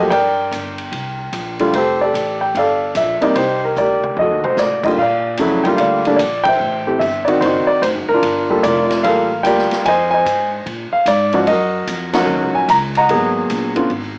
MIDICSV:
0, 0, Header, 1, 5, 480
1, 0, Start_track
1, 0, Tempo, 405680
1, 134, Time_signature, 4, 2, 24, 8
1, 16781, End_track
2, 0, Start_track
2, 0, Title_t, "Grand piano"
2, 0, Program_c, 0, 0
2, 0, Note_on_c, 0, 53, 60
2, 0, Note_on_c, 0, 57, 56
2, 0, Note_on_c, 0, 58, 56
2, 0, Note_on_c, 0, 67, 68
2, 119, Note_off_c, 0, 53, 0
2, 119, Note_off_c, 0, 57, 0
2, 122, Note_on_c, 0, 79, 97
2, 124, Note_off_c, 0, 58, 0
2, 127, Note_off_c, 0, 67, 0
2, 136, Note_on_c, 0, 74, 71
2, 143, Note_on_c, 0, 70, 70
2, 1833, Note_off_c, 0, 79, 0
2, 1840, Note_off_c, 0, 74, 0
2, 1843, Note_off_c, 0, 70, 0
2, 1891, Note_on_c, 0, 50, 63
2, 1900, Note_on_c, 0, 55, 60
2, 1901, Note_on_c, 0, 57, 57
2, 1902, Note_on_c, 0, 65, 68
2, 2040, Note_off_c, 0, 50, 0
2, 2045, Note_off_c, 0, 55, 0
2, 2045, Note_off_c, 0, 57, 0
2, 2046, Note_off_c, 0, 65, 0
2, 2072, Note_on_c, 0, 72, 80
2, 2092, Note_on_c, 0, 67, 64
2, 2101, Note_on_c, 0, 69, 63
2, 2354, Note_off_c, 0, 72, 0
2, 2381, Note_on_c, 0, 74, 72
2, 2386, Note_off_c, 0, 69, 0
2, 2387, Note_off_c, 0, 67, 0
2, 2404, Note_on_c, 0, 69, 54
2, 2405, Note_on_c, 0, 67, 56
2, 2852, Note_on_c, 0, 79, 71
2, 2868, Note_off_c, 0, 74, 0
2, 3023, Note_off_c, 0, 79, 0
2, 3042, Note_on_c, 0, 77, 83
2, 3044, Note_off_c, 0, 69, 0
2, 3059, Note_on_c, 0, 74, 63
2, 3061, Note_on_c, 0, 69, 61
2, 3299, Note_off_c, 0, 67, 0
2, 3513, Note_on_c, 0, 76, 81
2, 3523, Note_off_c, 0, 77, 0
2, 3795, Note_off_c, 0, 76, 0
2, 3803, Note_on_c, 0, 48, 74
2, 3810, Note_off_c, 0, 74, 0
2, 3812, Note_on_c, 0, 55, 68
2, 3813, Note_on_c, 0, 58, 73
2, 3815, Note_on_c, 0, 63, 84
2, 3828, Note_on_c, 0, 74, 74
2, 3953, Note_off_c, 0, 69, 0
2, 3957, Note_off_c, 0, 48, 0
2, 3962, Note_off_c, 0, 55, 0
2, 3962, Note_off_c, 0, 58, 0
2, 3964, Note_off_c, 0, 63, 0
2, 3975, Note_on_c, 0, 72, 81
2, 3976, Note_off_c, 0, 74, 0
2, 4001, Note_on_c, 0, 63, 56
2, 4003, Note_on_c, 0, 67, 61
2, 4297, Note_off_c, 0, 72, 0
2, 4316, Note_on_c, 0, 70, 67
2, 4461, Note_off_c, 0, 70, 0
2, 4477, Note_on_c, 0, 74, 79
2, 4487, Note_off_c, 0, 67, 0
2, 4498, Note_on_c, 0, 70, 57
2, 4505, Note_on_c, 0, 67, 55
2, 4903, Note_off_c, 0, 63, 0
2, 4915, Note_off_c, 0, 74, 0
2, 4926, Note_off_c, 0, 70, 0
2, 4930, Note_off_c, 0, 67, 0
2, 4958, Note_on_c, 0, 75, 77
2, 4983, Note_on_c, 0, 66, 53
2, 4990, Note_on_c, 0, 69, 50
2, 5263, Note_on_c, 0, 72, 70
2, 5431, Note_off_c, 0, 72, 0
2, 5434, Note_on_c, 0, 74, 73
2, 5694, Note_off_c, 0, 75, 0
2, 5717, Note_off_c, 0, 74, 0
2, 5734, Note_on_c, 0, 75, 68
2, 5740, Note_on_c, 0, 50, 58
2, 5742, Note_on_c, 0, 55, 54
2, 5744, Note_on_c, 0, 58, 55
2, 5752, Note_on_c, 0, 65, 63
2, 5793, Note_off_c, 0, 75, 0
2, 5875, Note_off_c, 0, 66, 0
2, 5878, Note_off_c, 0, 69, 0
2, 5888, Note_off_c, 0, 50, 0
2, 5888, Note_off_c, 0, 55, 0
2, 5890, Note_off_c, 0, 58, 0
2, 5893, Note_off_c, 0, 65, 0
2, 5901, Note_on_c, 0, 77, 86
2, 5944, Note_on_c, 0, 74, 61
2, 6381, Note_on_c, 0, 49, 72
2, 6389, Note_on_c, 0, 54, 62
2, 6394, Note_on_c, 0, 57, 64
2, 6399, Note_on_c, 0, 64, 77
2, 6661, Note_off_c, 0, 49, 0
2, 6665, Note_off_c, 0, 54, 0
2, 6668, Note_off_c, 0, 57, 0
2, 6670, Note_off_c, 0, 64, 0
2, 6670, Note_on_c, 0, 79, 79
2, 6690, Note_on_c, 0, 50, 57
2, 6692, Note_on_c, 0, 55, 63
2, 6694, Note_on_c, 0, 58, 59
2, 6704, Note_on_c, 0, 65, 67
2, 6716, Note_off_c, 0, 77, 0
2, 6729, Note_off_c, 0, 79, 0
2, 6823, Note_on_c, 0, 77, 81
2, 6836, Note_off_c, 0, 74, 0
2, 6867, Note_on_c, 0, 74, 58
2, 7109, Note_off_c, 0, 50, 0
2, 7110, Note_off_c, 0, 55, 0
2, 7111, Note_off_c, 0, 58, 0
2, 7116, Note_off_c, 0, 65, 0
2, 7176, Note_on_c, 0, 50, 67
2, 7181, Note_on_c, 0, 55, 64
2, 7185, Note_on_c, 0, 58, 67
2, 7186, Note_on_c, 0, 62, 77
2, 7273, Note_off_c, 0, 74, 0
2, 7287, Note_off_c, 0, 77, 0
2, 7291, Note_on_c, 0, 74, 80
2, 7326, Note_off_c, 0, 50, 0
2, 7329, Note_off_c, 0, 55, 0
2, 7331, Note_off_c, 0, 58, 0
2, 7331, Note_off_c, 0, 62, 0
2, 7614, Note_on_c, 0, 79, 107
2, 7638, Note_off_c, 0, 74, 0
2, 7669, Note_on_c, 0, 76, 64
2, 7672, Note_on_c, 0, 72, 58
2, 8125, Note_on_c, 0, 57, 54
2, 8126, Note_on_c, 0, 52, 53
2, 8131, Note_on_c, 0, 60, 54
2, 8132, Note_on_c, 0, 67, 64
2, 8256, Note_off_c, 0, 76, 0
2, 8273, Note_on_c, 0, 76, 86
2, 8281, Note_off_c, 0, 52, 0
2, 8281, Note_off_c, 0, 57, 0
2, 8284, Note_off_c, 0, 60, 0
2, 8284, Note_off_c, 0, 67, 0
2, 8302, Note_off_c, 0, 79, 0
2, 8575, Note_on_c, 0, 74, 72
2, 8576, Note_off_c, 0, 72, 0
2, 8598, Note_off_c, 0, 74, 0
2, 8606, Note_on_c, 0, 51, 68
2, 8609, Note_off_c, 0, 76, 0
2, 8611, Note_on_c, 0, 60, 59
2, 8616, Note_on_c, 0, 74, 56
2, 8618, Note_on_c, 0, 66, 70
2, 8762, Note_on_c, 0, 72, 82
2, 8799, Note_off_c, 0, 66, 0
2, 8817, Note_on_c, 0, 66, 59
2, 8826, Note_on_c, 0, 63, 60
2, 9058, Note_off_c, 0, 74, 0
2, 9076, Note_on_c, 0, 74, 84
2, 9093, Note_off_c, 0, 72, 0
2, 9225, Note_off_c, 0, 51, 0
2, 9227, Note_off_c, 0, 60, 0
2, 9241, Note_off_c, 0, 74, 0
2, 9253, Note_on_c, 0, 72, 80
2, 9324, Note_off_c, 0, 72, 0
2, 9567, Note_on_c, 0, 70, 90
2, 9632, Note_on_c, 0, 65, 62
2, 9633, Note_on_c, 0, 62, 62
2, 9712, Note_off_c, 0, 66, 0
2, 9717, Note_off_c, 0, 63, 0
2, 10017, Note_off_c, 0, 70, 0
2, 10047, Note_off_c, 0, 65, 0
2, 10057, Note_on_c, 0, 55, 64
2, 10058, Note_on_c, 0, 58, 57
2, 10065, Note_on_c, 0, 65, 57
2, 10065, Note_on_c, 0, 69, 70
2, 10207, Note_off_c, 0, 55, 0
2, 10207, Note_off_c, 0, 58, 0
2, 10211, Note_off_c, 0, 65, 0
2, 10211, Note_off_c, 0, 69, 0
2, 10215, Note_on_c, 0, 74, 86
2, 10262, Note_on_c, 0, 65, 61
2, 10273, Note_on_c, 0, 70, 65
2, 10516, Note_off_c, 0, 62, 0
2, 10664, Note_off_c, 0, 74, 0
2, 10688, Note_on_c, 0, 77, 98
2, 10689, Note_off_c, 0, 65, 0
2, 10697, Note_on_c, 0, 55, 59
2, 10706, Note_on_c, 0, 58, 54
2, 10707, Note_on_c, 0, 65, 53
2, 10710, Note_on_c, 0, 69, 67
2, 10717, Note_off_c, 0, 70, 0
2, 10735, Note_on_c, 0, 70, 65
2, 10979, Note_off_c, 0, 55, 0
2, 10984, Note_off_c, 0, 58, 0
2, 10985, Note_off_c, 0, 65, 0
2, 10986, Note_off_c, 0, 69, 0
2, 11141, Note_off_c, 0, 77, 0
2, 11159, Note_on_c, 0, 79, 94
2, 11184, Note_off_c, 0, 70, 0
2, 11184, Note_on_c, 0, 58, 57
2, 11187, Note_on_c, 0, 55, 63
2, 11190, Note_on_c, 0, 65, 60
2, 11196, Note_on_c, 0, 67, 74
2, 11200, Note_on_c, 0, 74, 68
2, 11202, Note_on_c, 0, 70, 65
2, 11616, Note_off_c, 0, 79, 0
2, 11638, Note_off_c, 0, 74, 0
2, 11639, Note_off_c, 0, 70, 0
2, 11661, Note_on_c, 0, 80, 104
2, 11663, Note_off_c, 0, 58, 0
2, 11664, Note_off_c, 0, 55, 0
2, 11666, Note_off_c, 0, 65, 0
2, 11669, Note_off_c, 0, 67, 0
2, 11693, Note_on_c, 0, 72, 77
2, 11693, Note_on_c, 0, 75, 74
2, 11939, Note_off_c, 0, 80, 0
2, 11957, Note_on_c, 0, 80, 98
2, 11979, Note_off_c, 0, 75, 0
2, 11983, Note_off_c, 0, 72, 0
2, 11997, Note_on_c, 0, 75, 59
2, 12001, Note_on_c, 0, 72, 64
2, 12411, Note_off_c, 0, 80, 0
2, 12588, Note_off_c, 0, 75, 0
2, 12591, Note_off_c, 0, 72, 0
2, 12928, Note_on_c, 0, 77, 86
2, 13103, Note_off_c, 0, 77, 0
2, 13108, Note_on_c, 0, 74, 87
2, 13403, Note_off_c, 0, 74, 0
2, 13410, Note_on_c, 0, 53, 69
2, 13410, Note_on_c, 0, 61, 62
2, 13416, Note_on_c, 0, 63, 65
2, 13421, Note_on_c, 0, 74, 72
2, 13426, Note_on_c, 0, 66, 74
2, 13480, Note_off_c, 0, 74, 0
2, 13562, Note_off_c, 0, 53, 0
2, 13562, Note_off_c, 0, 61, 0
2, 13565, Note_off_c, 0, 63, 0
2, 13570, Note_off_c, 0, 66, 0
2, 13575, Note_on_c, 0, 75, 89
2, 13593, Note_on_c, 0, 66, 64
2, 13602, Note_on_c, 0, 70, 69
2, 14357, Note_off_c, 0, 66, 0
2, 14358, Note_on_c, 0, 54, 68
2, 14361, Note_on_c, 0, 61, 57
2, 14370, Note_on_c, 0, 63, 58
2, 14370, Note_on_c, 0, 78, 82
2, 14371, Note_off_c, 0, 70, 0
2, 14374, Note_on_c, 0, 66, 73
2, 14389, Note_on_c, 0, 70, 57
2, 14391, Note_off_c, 0, 75, 0
2, 14394, Note_on_c, 0, 73, 57
2, 14815, Note_off_c, 0, 78, 0
2, 14848, Note_on_c, 0, 80, 86
2, 14977, Note_off_c, 0, 54, 0
2, 14978, Note_off_c, 0, 61, 0
2, 14983, Note_off_c, 0, 63, 0
2, 14985, Note_off_c, 0, 66, 0
2, 15004, Note_off_c, 0, 80, 0
2, 15025, Note_on_c, 0, 82, 95
2, 15094, Note_off_c, 0, 82, 0
2, 15289, Note_off_c, 0, 70, 0
2, 15291, Note_off_c, 0, 73, 0
2, 15353, Note_on_c, 0, 82, 94
2, 15362, Note_on_c, 0, 78, 68
2, 15364, Note_on_c, 0, 75, 68
2, 15497, Note_on_c, 0, 54, 59
2, 15507, Note_on_c, 0, 58, 55
2, 15507, Note_on_c, 0, 59, 50
2, 15509, Note_on_c, 0, 68, 66
2, 16222, Note_off_c, 0, 54, 0
2, 16227, Note_off_c, 0, 58, 0
2, 16227, Note_off_c, 0, 59, 0
2, 16228, Note_off_c, 0, 68, 0
2, 16275, Note_on_c, 0, 50, 60
2, 16279, Note_on_c, 0, 59, 62
2, 16290, Note_on_c, 0, 65, 71
2, 16291, Note_on_c, 0, 61, 55
2, 16421, Note_off_c, 0, 78, 0
2, 16422, Note_off_c, 0, 75, 0
2, 16430, Note_off_c, 0, 50, 0
2, 16432, Note_off_c, 0, 59, 0
2, 16438, Note_off_c, 0, 61, 0
2, 16438, Note_off_c, 0, 65, 0
2, 16781, Note_off_c, 0, 82, 0
2, 16781, End_track
3, 0, Start_track
3, 0, Title_t, "Upright bass"
3, 0, Program_c, 1, 32
3, 127, Note_on_c, 1, 43, 81
3, 596, Note_off_c, 1, 43, 0
3, 610, Note_on_c, 1, 31, 79
3, 1077, Note_off_c, 1, 31, 0
3, 1089, Note_on_c, 1, 36, 77
3, 1557, Note_off_c, 1, 36, 0
3, 1571, Note_on_c, 1, 34, 82
3, 2039, Note_off_c, 1, 34, 0
3, 2049, Note_on_c, 1, 29, 80
3, 2518, Note_off_c, 1, 29, 0
3, 2527, Note_on_c, 1, 33, 81
3, 2997, Note_off_c, 1, 33, 0
3, 3013, Note_on_c, 1, 31, 80
3, 3480, Note_off_c, 1, 31, 0
3, 3489, Note_on_c, 1, 34, 80
3, 3782, Note_off_c, 1, 34, 0
3, 3967, Note_on_c, 1, 36, 78
3, 4438, Note_off_c, 1, 36, 0
3, 4455, Note_on_c, 1, 38, 79
3, 4922, Note_off_c, 1, 38, 0
3, 4927, Note_on_c, 1, 41, 80
3, 5094, Note_off_c, 1, 41, 0
3, 5094, Note_on_c, 1, 39, 52
3, 5249, Note_off_c, 1, 39, 0
3, 5256, Note_on_c, 1, 36, 58
3, 5397, Note_off_c, 1, 36, 0
3, 5404, Note_on_c, 1, 45, 77
3, 5878, Note_off_c, 1, 45, 0
3, 5886, Note_on_c, 1, 46, 86
3, 6359, Note_off_c, 1, 46, 0
3, 6365, Note_on_c, 1, 41, 81
3, 6834, Note_off_c, 1, 41, 0
3, 6841, Note_on_c, 1, 38, 76
3, 7317, Note_off_c, 1, 38, 0
3, 7322, Note_on_c, 1, 34, 81
3, 7798, Note_off_c, 1, 34, 0
3, 7808, Note_on_c, 1, 33, 81
3, 8274, Note_off_c, 1, 33, 0
3, 8281, Note_on_c, 1, 31, 85
3, 8757, Note_off_c, 1, 31, 0
3, 8767, Note_on_c, 1, 30, 84
3, 9064, Note_off_c, 1, 30, 0
3, 9248, Note_on_c, 1, 33, 83
3, 9402, Note_off_c, 1, 33, 0
3, 9402, Note_on_c, 1, 30, 54
3, 9560, Note_off_c, 1, 30, 0
3, 9567, Note_on_c, 1, 26, 61
3, 9723, Note_off_c, 1, 26, 0
3, 9730, Note_on_c, 1, 31, 84
3, 10201, Note_off_c, 1, 31, 0
3, 10215, Note_on_c, 1, 29, 90
3, 10684, Note_off_c, 1, 29, 0
3, 10695, Note_on_c, 1, 33, 84
3, 11158, Note_off_c, 1, 33, 0
3, 11165, Note_on_c, 1, 38, 91
3, 11462, Note_off_c, 1, 38, 0
3, 11654, Note_on_c, 1, 41, 88
3, 12123, Note_off_c, 1, 41, 0
3, 12133, Note_on_c, 1, 44, 88
3, 12602, Note_off_c, 1, 44, 0
3, 12611, Note_on_c, 1, 46, 84
3, 12905, Note_off_c, 1, 46, 0
3, 13081, Note_on_c, 1, 44, 87
3, 13555, Note_off_c, 1, 44, 0
3, 13568, Note_on_c, 1, 42, 82
3, 14038, Note_off_c, 1, 42, 0
3, 14048, Note_on_c, 1, 41, 84
3, 14511, Note_off_c, 1, 41, 0
3, 14518, Note_on_c, 1, 39, 82
3, 14679, Note_off_c, 1, 39, 0
3, 14679, Note_on_c, 1, 37, 58
3, 14820, Note_off_c, 1, 37, 0
3, 14827, Note_on_c, 1, 34, 66
3, 14989, Note_off_c, 1, 34, 0
3, 15007, Note_on_c, 1, 37, 90
3, 15476, Note_off_c, 1, 37, 0
3, 15488, Note_on_c, 1, 32, 85
3, 15955, Note_off_c, 1, 32, 0
3, 15971, Note_on_c, 1, 34, 84
3, 16435, Note_off_c, 1, 34, 0
3, 16447, Note_on_c, 1, 32, 78
3, 16781, Note_off_c, 1, 32, 0
3, 16781, End_track
4, 0, Start_track
4, 0, Title_t, "Muted upright bass strokes"
4, 3812, Note_on_c, 9, 29, 36
4, 3931, Note_off_c, 9, 29, 0
4, 9071, Note_on_c, 9, 29, 36
4, 9189, Note_off_c, 9, 29, 0
4, 11484, Note_on_c, 9, 29, 36
4, 11602, Note_off_c, 9, 29, 0
4, 12921, Note_on_c, 9, 29, 38
4, 13040, Note_off_c, 9, 29, 0
4, 16781, End_track
5, 0, Start_track
5, 0, Title_t, "Drums"
5, 132, Note_on_c, 9, 36, 28
5, 136, Note_on_c, 9, 51, 59
5, 251, Note_off_c, 9, 36, 0
5, 255, Note_off_c, 9, 51, 0
5, 613, Note_on_c, 9, 36, 21
5, 621, Note_on_c, 9, 44, 50
5, 621, Note_on_c, 9, 51, 56
5, 731, Note_off_c, 9, 36, 0
5, 739, Note_off_c, 9, 44, 0
5, 739, Note_off_c, 9, 51, 0
5, 925, Note_on_c, 9, 51, 43
5, 1043, Note_off_c, 9, 51, 0
5, 1091, Note_on_c, 9, 36, 17
5, 1094, Note_on_c, 9, 51, 54
5, 1209, Note_off_c, 9, 36, 0
5, 1213, Note_off_c, 9, 51, 0
5, 1571, Note_on_c, 9, 36, 17
5, 1571, Note_on_c, 9, 44, 59
5, 1571, Note_on_c, 9, 51, 61
5, 1689, Note_off_c, 9, 36, 0
5, 1689, Note_off_c, 9, 44, 0
5, 1689, Note_off_c, 9, 51, 0
5, 1885, Note_on_c, 9, 51, 41
5, 2004, Note_off_c, 9, 51, 0
5, 2051, Note_on_c, 9, 51, 59
5, 2052, Note_on_c, 9, 36, 20
5, 2170, Note_off_c, 9, 36, 0
5, 2170, Note_off_c, 9, 51, 0
5, 2536, Note_on_c, 9, 36, 20
5, 2541, Note_on_c, 9, 44, 46
5, 2541, Note_on_c, 9, 51, 56
5, 2655, Note_off_c, 9, 36, 0
5, 2660, Note_off_c, 9, 44, 0
5, 2660, Note_off_c, 9, 51, 0
5, 3015, Note_on_c, 9, 36, 23
5, 3019, Note_on_c, 9, 51, 49
5, 3133, Note_off_c, 9, 36, 0
5, 3137, Note_off_c, 9, 51, 0
5, 3487, Note_on_c, 9, 44, 60
5, 3487, Note_on_c, 9, 51, 60
5, 3493, Note_on_c, 9, 36, 22
5, 3605, Note_off_c, 9, 44, 0
5, 3605, Note_off_c, 9, 51, 0
5, 3611, Note_off_c, 9, 36, 0
5, 3804, Note_on_c, 9, 51, 42
5, 3922, Note_off_c, 9, 51, 0
5, 3968, Note_on_c, 9, 51, 63
5, 3973, Note_on_c, 9, 36, 23
5, 4087, Note_off_c, 9, 51, 0
5, 4091, Note_off_c, 9, 36, 0
5, 4450, Note_on_c, 9, 44, 42
5, 4451, Note_on_c, 9, 47, 40
5, 4568, Note_off_c, 9, 44, 0
5, 4569, Note_off_c, 9, 47, 0
5, 4773, Note_on_c, 9, 47, 62
5, 4891, Note_off_c, 9, 47, 0
5, 4928, Note_on_c, 9, 47, 57
5, 5046, Note_off_c, 9, 47, 0
5, 5252, Note_on_c, 9, 47, 67
5, 5370, Note_off_c, 9, 47, 0
5, 5408, Note_on_c, 9, 44, 55
5, 5410, Note_on_c, 9, 38, 49
5, 5527, Note_off_c, 9, 44, 0
5, 5528, Note_off_c, 9, 38, 0
5, 5723, Note_on_c, 9, 36, 68
5, 5723, Note_on_c, 9, 49, 66
5, 5841, Note_off_c, 9, 36, 0
5, 5841, Note_off_c, 9, 49, 0
5, 5889, Note_on_c, 9, 36, 20
5, 6008, Note_off_c, 9, 36, 0
5, 6358, Note_on_c, 9, 44, 57
5, 6358, Note_on_c, 9, 51, 61
5, 6367, Note_on_c, 9, 36, 20
5, 6476, Note_off_c, 9, 44, 0
5, 6476, Note_off_c, 9, 51, 0
5, 6485, Note_off_c, 9, 36, 0
5, 6681, Note_on_c, 9, 51, 44
5, 6799, Note_off_c, 9, 51, 0
5, 6838, Note_on_c, 9, 51, 60
5, 6845, Note_on_c, 9, 36, 19
5, 6957, Note_off_c, 9, 51, 0
5, 6964, Note_off_c, 9, 36, 0
5, 7158, Note_on_c, 9, 51, 40
5, 7276, Note_off_c, 9, 51, 0
5, 7324, Note_on_c, 9, 44, 51
5, 7324, Note_on_c, 9, 51, 65
5, 7327, Note_on_c, 9, 36, 18
5, 7442, Note_off_c, 9, 44, 0
5, 7442, Note_off_c, 9, 51, 0
5, 7445, Note_off_c, 9, 36, 0
5, 7632, Note_on_c, 9, 51, 66
5, 7636, Note_on_c, 9, 36, 76
5, 7751, Note_off_c, 9, 51, 0
5, 7755, Note_off_c, 9, 36, 0
5, 8288, Note_on_c, 9, 36, 20
5, 8293, Note_on_c, 9, 44, 50
5, 8293, Note_on_c, 9, 51, 55
5, 8407, Note_off_c, 9, 36, 0
5, 8412, Note_off_c, 9, 44, 0
5, 8412, Note_off_c, 9, 51, 0
5, 8609, Note_on_c, 9, 51, 44
5, 8727, Note_off_c, 9, 51, 0
5, 8772, Note_on_c, 9, 36, 17
5, 8778, Note_on_c, 9, 51, 57
5, 8891, Note_off_c, 9, 36, 0
5, 8896, Note_off_c, 9, 51, 0
5, 9253, Note_on_c, 9, 36, 19
5, 9260, Note_on_c, 9, 44, 50
5, 9260, Note_on_c, 9, 51, 65
5, 9372, Note_off_c, 9, 36, 0
5, 9378, Note_off_c, 9, 44, 0
5, 9378, Note_off_c, 9, 51, 0
5, 9733, Note_on_c, 9, 51, 65
5, 9736, Note_on_c, 9, 36, 23
5, 9851, Note_off_c, 9, 51, 0
5, 9855, Note_off_c, 9, 36, 0
5, 10216, Note_on_c, 9, 44, 57
5, 10216, Note_on_c, 9, 51, 63
5, 10217, Note_on_c, 9, 36, 21
5, 10335, Note_off_c, 9, 36, 0
5, 10335, Note_off_c, 9, 44, 0
5, 10335, Note_off_c, 9, 51, 0
5, 10535, Note_on_c, 9, 51, 47
5, 10536, Note_on_c, 9, 38, 36
5, 10653, Note_off_c, 9, 51, 0
5, 10654, Note_off_c, 9, 38, 0
5, 10697, Note_on_c, 9, 36, 21
5, 10697, Note_on_c, 9, 51, 57
5, 10815, Note_off_c, 9, 36, 0
5, 10815, Note_off_c, 9, 51, 0
5, 11172, Note_on_c, 9, 44, 58
5, 11172, Note_on_c, 9, 51, 65
5, 11176, Note_on_c, 9, 36, 23
5, 11290, Note_off_c, 9, 44, 0
5, 11290, Note_off_c, 9, 51, 0
5, 11294, Note_off_c, 9, 36, 0
5, 11339, Note_on_c, 9, 38, 26
5, 11458, Note_off_c, 9, 38, 0
5, 11488, Note_on_c, 9, 51, 46
5, 11499, Note_on_c, 9, 38, 44
5, 11606, Note_off_c, 9, 51, 0
5, 11618, Note_off_c, 9, 38, 0
5, 11658, Note_on_c, 9, 36, 23
5, 11659, Note_on_c, 9, 51, 67
5, 11776, Note_off_c, 9, 36, 0
5, 11777, Note_off_c, 9, 51, 0
5, 12137, Note_on_c, 9, 36, 20
5, 12140, Note_on_c, 9, 44, 50
5, 12140, Note_on_c, 9, 51, 60
5, 12255, Note_off_c, 9, 36, 0
5, 12258, Note_off_c, 9, 44, 0
5, 12258, Note_off_c, 9, 51, 0
5, 12615, Note_on_c, 9, 36, 21
5, 12617, Note_on_c, 9, 51, 52
5, 12734, Note_off_c, 9, 36, 0
5, 12735, Note_off_c, 9, 51, 0
5, 13086, Note_on_c, 9, 44, 61
5, 13086, Note_on_c, 9, 51, 63
5, 13091, Note_on_c, 9, 36, 22
5, 13204, Note_off_c, 9, 44, 0
5, 13204, Note_off_c, 9, 51, 0
5, 13209, Note_off_c, 9, 36, 0
5, 13399, Note_on_c, 9, 51, 42
5, 13517, Note_off_c, 9, 51, 0
5, 13569, Note_on_c, 9, 36, 26
5, 13570, Note_on_c, 9, 51, 63
5, 13687, Note_off_c, 9, 36, 0
5, 13688, Note_off_c, 9, 51, 0
5, 14049, Note_on_c, 9, 44, 53
5, 14049, Note_on_c, 9, 51, 61
5, 14050, Note_on_c, 9, 36, 18
5, 14168, Note_off_c, 9, 36, 0
5, 14168, Note_off_c, 9, 44, 0
5, 14168, Note_off_c, 9, 51, 0
5, 14357, Note_on_c, 9, 51, 65
5, 14358, Note_on_c, 9, 38, 81
5, 14475, Note_off_c, 9, 51, 0
5, 14477, Note_off_c, 9, 38, 0
5, 15008, Note_on_c, 9, 44, 64
5, 15008, Note_on_c, 9, 51, 68
5, 15011, Note_on_c, 9, 36, 23
5, 15127, Note_off_c, 9, 44, 0
5, 15127, Note_off_c, 9, 51, 0
5, 15129, Note_off_c, 9, 36, 0
5, 15324, Note_on_c, 9, 51, 45
5, 15442, Note_off_c, 9, 51, 0
5, 15489, Note_on_c, 9, 51, 65
5, 15492, Note_on_c, 9, 36, 19
5, 15607, Note_off_c, 9, 51, 0
5, 15610, Note_off_c, 9, 36, 0
5, 15969, Note_on_c, 9, 44, 53
5, 15969, Note_on_c, 9, 51, 64
5, 15971, Note_on_c, 9, 36, 22
5, 16087, Note_off_c, 9, 44, 0
5, 16087, Note_off_c, 9, 51, 0
5, 16090, Note_off_c, 9, 36, 0
5, 16278, Note_on_c, 9, 51, 49
5, 16396, Note_off_c, 9, 51, 0
5, 16443, Note_on_c, 9, 51, 57
5, 16447, Note_on_c, 9, 36, 24
5, 16561, Note_off_c, 9, 51, 0
5, 16565, Note_off_c, 9, 36, 0
5, 16781, End_track
0, 0, End_of_file